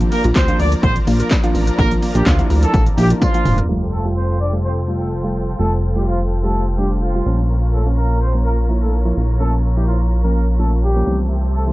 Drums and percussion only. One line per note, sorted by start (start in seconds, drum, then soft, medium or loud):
0.00 closed hi-hat medium
0.00 shaker medium
0.12 open hi-hat medium
0.12 tambourine medium
0.12 shaker medium
0.24 closed hi-hat medium
0.24 shaker medium
0.36 kick loud
0.36 snare medium
0.36 clap loud
0.36 tambourine medium
0.36 shaker medium
0.48 closed hi-hat medium
0.48 shaker medium
0.60 open hi-hat medium
0.60 shaker medium
0.72 closed hi-hat medium
0.72 shaker medium
0.83 kick loud
0.83 shaker medium
0.96 closed hi-hat medium
0.96 shaker medium
1.07 open hi-hat medium
1.07 tambourine medium
1.07 shaker medium
1.20 closed hi-hat medium
1.20 shaker medium
1.31 kick loud
1.31 snare loud
1.31 clap loud
1.31 tambourine loud
1.31 shaker medium
1.44 closed hi-hat medium
1.44 shaker medium
1.55 open hi-hat medium
1.55 tambourine medium
1.55 shaker medium
1.67 closed hi-hat medium
1.67 shaker medium
1.79 kick loud
1.79 tambourine medium
1.79 shaker medium
1.91 closed hi-hat medium
1.91 shaker medium
2.02 open hi-hat medium
2.02 tambourine medium
2.02 shaker medium
2.15 closed hi-hat medium
2.15 shaker medium
2.26 kick loud
2.26 snare medium
2.26 clap loud
2.26 tambourine medium
2.26 shaker medium
2.39 closed hi-hat medium
2.39 shaker medium
2.50 open hi-hat medium
2.50 tambourine soft
2.50 shaker medium
2.63 closed hi-hat medium
2.63 shaker medium
2.74 kick loud
2.74 tambourine soft
2.74 shaker medium
2.86 closed hi-hat medium
2.86 shaker medium
2.98 open hi-hat medium
2.98 tambourine medium
2.98 shaker medium
3.10 closed hi-hat medium
3.10 shaker medium
3.22 kick loud
3.22 high tom medium
3.22 tambourine loud
3.22 shaker medium
3.34 closed hi-hat medium
3.34 shaker medium
3.45 mid tom loud
3.45 open hi-hat medium
3.45 tambourine medium
3.45 shaker medium
3.58 closed hi-hat medium
3.58 floor tom loud
3.58 shaker medium